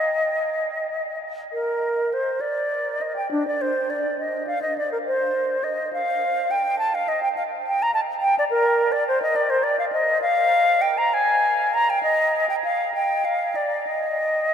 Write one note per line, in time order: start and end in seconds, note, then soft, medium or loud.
0.00 1.18 D#5 medium
1.53 2.15 A#4 medium
2.14 2.42 C5 medium
2.41 3.03 D5 medium
3.01 3.16 D#5 medium
3.16 3.31 G5 medium
3.31 3.46 D4 medium
3.48 3.63 D5 medium
3.61 3.92 C5 medium
3.90 4.18 D5 soft
4.19 4.47 D#5 medium
4.47 4.61 F5 medium
4.62 4.76 D#5 medium
4.78 4.92 D5 medium
4.92 4.98 A#4 medium
5.07 5.65 C5 medium
5.64 5.92 D#5 medium
5.93 6.52 F5 medium
6.51 6.78 G5 medium
6.78 6.96 A5 medium
6.95 7.10 F5 medium
7.08 7.22 D#5 medium
7.23 7.29 G5 medium
7.37 7.43 F5 medium
7.67 7.84 G5 medium
7.83 7.94 A#5 medium
7.94 8.01 A5 medium
8.22 8.35 G5 medium
8.39 8.45 D5 medium
8.50 8.93 A#4 medium
8.92 9.07 D5 medium
9.08 9.22 C5 medium
9.22 9.37 D#5 medium
9.36 9.51 D5 medium
9.50 9.65 C5 medium
9.63 9.79 D5 medium
9.79 9.85 F5 medium
9.93 10.21 D#5 medium
10.22 10.83 F5 medium
10.82 10.99 G5 medium
10.98 11.15 A#5 medium
11.14 11.75 G#5 medium
11.74 11.91 A#5 medium
11.90 12.02 G5 medium
12.03 12.48 D#5 medium
12.49 12.55 G5 medium
12.64 12.94 F5 medium
12.94 13.26 G5 medium
13.25 13.57 F5 medium
13.55 13.88 D5 medium
13.87 14.54 D#5 medium